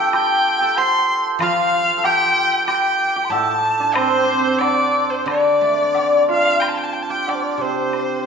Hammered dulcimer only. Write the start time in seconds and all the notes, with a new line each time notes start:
Already playing: C4 D4 F4 G4 A4
0.13 G4
0.61 A4
0.78 C5
1.41 F4
1.97 A4
2.04 G4
2.68 G4
3.16 G4
3.32 A4
3.80 D4
3.96 C4
4.03 C4
4.10 C4
4.18 C4
4.25 C4
4.33 C4
4.39 C4
4.47 C4
4.60 D4
5.26 D4
6.29 F4
7.10 G4
7.28 D4
7.61 C4